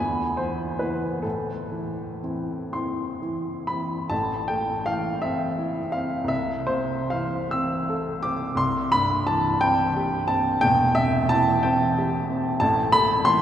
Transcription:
upright piano
Already playing: G#5
0.00 E2
0.37 E3 E4 C5
0.79 B3 E4 B4
1.22 A2 A4
1.72 E3 E4
2.24 C4 E4
2.73 C4 E4 C6
3.22 E3 E4
3.67 C4 E4 B5
4.10 A1 A2 A5
4.48 A3 G5
4.86 E3 F5
5.22 C4 E5
5.59 E4
5.92 C4 F5
6.24 C2
6.28 E5
6.67 C3 C5
7.10 E3 F5
7.51 C4 E6
7.90 A4
8.23 C4 D6
8.55 C2 C6
8.92 G2 B5
9.27 E3 A5
9.61 C4 G5
9.96 G4
10.28 C4 A5
10.61 E1 E2 G5
10.95 C3 E5
11.29 E3 A5
11.63 C4 G5
11.98 G4
12.30 C4
12.60 A1 A2 A5
12.92 A3 B5
13.25 E3 C6

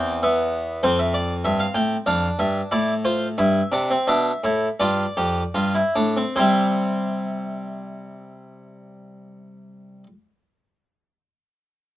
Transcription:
harpsichord
Already playing: E2 C4 G5
0.23 B3 E5
0.83 F2 C4 C5
0.99 E5
1.14 D5
1.45 G2 E5
1.60 F5
1.75 A2 G5
2.06 F2 D4 F5
2.39 G2 E5
2.71 A2 E4 D5
3.05 F4 C5
3.38 G2 E4 E5
3.72 C3 D4
3.90 C4
4.07 B2 D4 E5
4.44 A2 E4
4.80 G2 F4 D5
5.17 F2 G4
5.54 G2 F4
5.75 E4
5.95 A2 D4
6.17 C4
6.36 C3 G3 C4 E4 C5

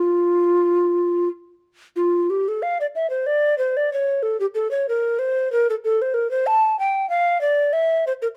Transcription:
recorder
Already playing: F4
1.96 F4
2.30 G4
2.48 A4
2.62 F5
2.81 D5
2.95 E5
3.10 C5
3.27 D5
3.58 C5
3.77 D5
3.93 C#5
4.23 A4
4.40 G4
4.55 A4
4.71 C#5
4.89 A#4
5.19 C5
5.52 A#4
5.70 A4
5.84 A4
6.02 C5
6.14 A#4
6.31 C5
6.47 A5
6.79 G5
7.10 F5
7.41 D5
7.73 E5
8.07 C5
8.22 A#4

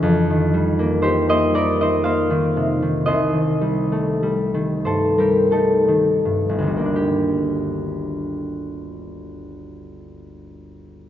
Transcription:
harp
Already playing: D#5
0.03 F2
0.30 D#3
0.54 G3
0.79 A#3
1.02 D#4 G4 C5
1.29 A#3 C5 D#5
1.54 G3 A#4 D5
1.81 D#4 C5 D#5
2.04 A#3 C5 F5
2.30 D#3
2.57 C3
2.82 D#3
3.06 C2 C5 D#5
3.33 D#3
3.61 G3
3.92 A3
4.23 G3
4.54 D#3
4.85 G2 A4 C5
5.18 G3 G4 A#4
5.51 A3 D#4 A4
5.88 D#3
6.25 G2
6.49 G1
6.58 D2
6.63 D#3
6.67 G3
6.77 A#3
6.85 D4
6.96 G4

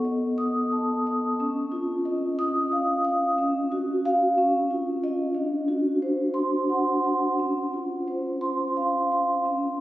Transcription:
vibraphone
Already playing: B3 A4
0.05 D#5
0.38 D#6
0.72 A5
1.07 D#6
1.40 C#4
1.72 F4
2.05 D#5
2.39 D#6
2.72 F5
3.05 D#6
3.38 C#4
3.72 F#4
4.05 F#4 F5
4.38 C#4
4.71 F4
5.03 F4 D#5
5.34 D4
5.68 F#4
6.02 C5
6.34 C6
6.69 F#5
7.04 C6
7.39 C#4
7.74 F4
8.08 C5
8.41 C6
8.77 F5
9.12 C6
9.45 C#4

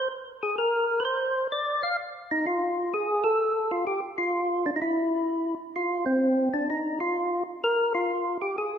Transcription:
tonewheel organ
0.43 G#4
0.58 A#4
1.00 B4
1.05 C5
1.52 D5
1.83 F5
2.31 D#4
2.46 F4
2.94 G#4
3.24 A4
3.71 F4
3.87 G4
4.18 F4
4.66 D4
4.76 D#4
4.82 E4
5.76 F4
6.06 C4
6.54 D4
6.70 D#4
7.00 F4
7.64 A#4
7.95 F4
8.42 G4
8.58 G#4

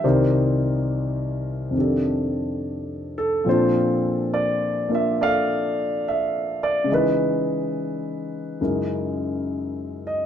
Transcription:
grand piano
0.04 C2 C3 D#3 D#4 G4 A#4 C5 D5
1.70 F2 C3 D#3
1.77 D4 G4 A4
3.18 A4
3.44 A#2 F3 C4 D4
3.49 F4 A4 C5
4.34 D5
4.88 A#3 D4 F4 D5
4.95 E5
5.21 A4 D5 F5
6.08 E5
6.63 D5
6.84 C#3 G#3
6.89 E3 D#4 E4 D#5
6.94 B4
8.61 F#2 C#3 G#3 D#4 E4 A#4
10.07 D#5

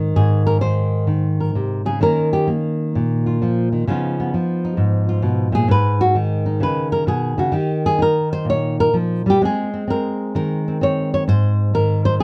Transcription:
nylon-string guitar
Already playing: G#2 D#3 C4 F#4
0.16 G#2 G#4
0.47 A#4
0.61 D#3 C5
1.07 D#3
1.40 A#4
1.55 C3
1.86 C#3 G#4
2.01 D#3 A#3 C#4 A#4
2.33 G4
2.47 A#3
2.95 A#2
3.26 F4
3.42 F3
3.72 D#3
3.87 C#3 F3 B3 D#4 F4
4.20 B3
4.34 F3
4.65 D#4
4.77 G#2
5.09 F4
5.22 B2
5.52 A#2 G#4
5.68 G#2 B4
6.01 F#4
6.15 D#3
6.46 D#4
6.60 C#3 B4
6.92 A#4
7.07 B2 G#4
7.38 C#3 F#4
7.52 D#3 D#4 G4
7.86 G#4
7.99 D#4 A#4
8.33 C5
8.45 A#2
8.50 C#5
8.80 A#4
8.94 F3
9.26 G3 G4
9.41 G#3 C4 G#4
9.74 C4
9.88 C4 A#4
10.35 D#3 A#4
10.68 C4
10.81 C4 C#5
11.14 C#5
11.28 G#2 C5
11.74 D#3 A#4
12.05 C5
12.20 D#3 G#4

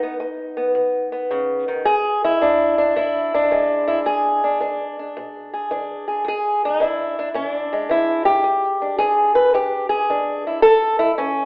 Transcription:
steel-string acoustic guitar
Already playing: B2 D#4
0.03 B3
0.20 B3
0.57 B3
0.75 B2
1.12 B3
1.31 C#3
1.68 D#3
1.85 E2 G#4
2.24 E4
2.41 E3 D4
2.78 D4
2.96 B2 E4
3.34 D4
3.51 E3 G#3
3.88 E4
4.06 E2 G#4
4.44 D4
4.60 E3 D4
4.99 D4
5.17 B2
5.54 G#4
5.71 E3 D4
6.08 G#4
6.25 E2 G#4
6.65 D#4
6.80 E3 D4 E4
7.19 D4
7.34 B2 C#4
7.48 D4
7.73 G#3
7.89 E3 E4
8.25 G4
8.44 E2
8.82 D4
8.98 E3 G#4
9.35 B4
9.54 B2 G4
9.89 G#4
10.10 E3 D4
10.47 E4
10.62 A2 A4
10.99 E4
11.18 E3 C#4

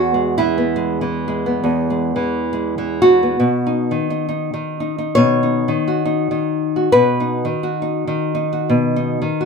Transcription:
nylon-string guitar
Already playing: E2 B3 F#4
0.14 G#3
0.38 E3 E4
0.58 B3
0.76 G#3
1.01 E3
1.28 G#3
1.46 B3
1.64 E2
1.90 G#3
2.16 E3
2.53 G#3
2.78 E3
3.02 F#4
3.23 B3
3.40 B2
3.67 D#4
3.91 D#3
4.10 D#4
4.29 D#4
4.54 D#3
4.80 D#4
4.98 D#4
5.15 B2 C#5
5.43 D#4
5.68 D#3
5.88 F#4
6.05 D#4
6.31 D#3
6.76 F#4
6.92 B2 B4
7.20 D#4
7.45 D#3
7.63 F#4
7.82 D#4
8.07 D#3
8.35 D#4
8.53 F#4
8.69 B2
8.96 D#4
9.22 D#3
9.41 F#4

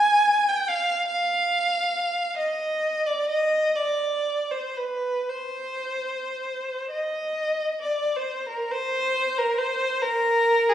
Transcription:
violin
Already playing: G#5
0.49 G5
0.69 F5
1.08 F5
2.38 D#5
3.07 D5
3.29 D#5
3.76 D5
4.51 C5
4.77 B4
5.29 C5
6.91 D#5
7.82 D5
8.16 C5
8.49 A#4
8.71 C5
9.39 A#4
9.59 C5
10.02 A#4
10.69 G#4

